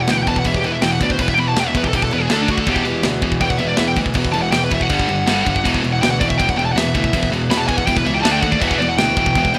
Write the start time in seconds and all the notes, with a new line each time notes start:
0.02 F#5
0.07 D2 E2 B2 E3 G5, snare, crash
0.17 F#5
0.23 E2 G5
0.27 E1 B2 E3 A5, kick, crash
0.36 F#5, kick
0.44 E1 E2 B2 E3 E5, kick, crash
0.54 G4, kick
0.64 E2 B2 E3 B4, crash
0.72 E5
0.81 E2 B2 E3 G5, snare, crash
0.92 F#5
1.01 D2 E2 B2 E3 D5, kick, crash
1.10 C5, kick
1.19 E1 E2 B2 E3 B4, kick, crash
1.28 E5, kick
1.34 E1 G5, crash
1.38 E2 B2 E3 B5
1.48 A5
1.56 E2 B2 E3 G5, snare, crash
1.68 E5
1.75 E2 B2 E3 B4, kick, crash
1.84 G4 A4, kick
1.93 E1 E2 B2 E3 G4, kick, crash
2.02 A4, kick
2.11 E2 B2 E3 B4, crash
2.22 G#4
2.29 D2 D3 A3 D4 A4, snare, crash
2.42 D4
2.48 D2 D3 A3 D4 F#4, kick, crash
2.58 A4, kick
2.66 E1 E2 B2 E3 G4, kick, crash
2.76 kick
2.85 E1 E2 B2 E3, crash
3.03 D2 E2 B2 E3, snare, crash
3.22 E1 E2 B2 E3, kick, crash
3.32 kick
3.40 E1 E2 B2 E3 G5, kick, crash
3.50 F#5, kick
3.58 E2 B2 E3 E5, crash
3.68 D5
3.77 E2 B2 E3 E5, snare, crash
3.88 G5
3.96 D2 E2 B2 E3, kick, crash
4.06 kick
4.14 E1 E2 B2 E3, kick, crash
4.25 kick
4.32 E1 E2 B2 E3 A5, crash
4.42 F#5
4.52 E2 B2 E3 G5, snare, crash
4.64 B4
4.71 E2 B2 E3 E5, kick, crash
4.81 F#5, kick
4.89 G1 G2 D3 G3, kick, crash
4.99 kick
5.09 G1 G2 D3 G3, crash
5.27 G1 G2 D3 G3, snare, crash
5.45 G1 G2 D3 G3, kick, crash
5.56 kick
5.65 E1 E2 B2 E3, kick, crash
5.74 kick
5.84 E1 E2 B2 E3, crash
5.93 F#5
6.02 D2 E2 B2 E3 G5, snare, crash
6.11 F#5
6.19 E1 E2 B2 E3 D5, kick, crash
6.29 E5, kick
6.38 E1 E2 B2 E3 G5, kick, crash
6.49 F#5, kick
6.58 E2 B2 E3 G5, crash
6.66 A5
6.73 E2 F#5
6.77 E2 B2 E3 E5, snare, crash
6.95 D2 E2 B2 E3, kick, crash
7.04 kick
7.13 E1 E2 B2 E3, kick, crash
7.23 kick
7.31 E1 E2 B2 E3, crash
7.49 E2 B2 E3 B5, snare, crash
7.57 A5
7.68 E2 B2 E3 G#5, kick, crash
7.78 F#5, kick
7.86 E1 E2 B2 E3 G5, kick, crash
7.97 B4, kick
8.06 C#2 E2 B2 E3 E5, crash
8.14 G5
8.22 D2 D3 A3 D4 A5, snare, crash
8.32 G5
8.41 D#2 D3 A3 D4 F#5, kick, crash
8.51 D5, kick
8.61 E1 E2 B2 E3 E5, kick, crash
8.68 F#5, kick
8.72 E5
8.79 E1 E2 B2 E3 D5, crash
8.89 F#5
8.98 D2 E2 B2 E3 G5, snare, crash
9.16 E1 E2 B2 E3, kick, crash
9.26 kick
9.35 E1 E2 B2 E3, kick, crash
9.45 kick
9.54 E2 B2, crash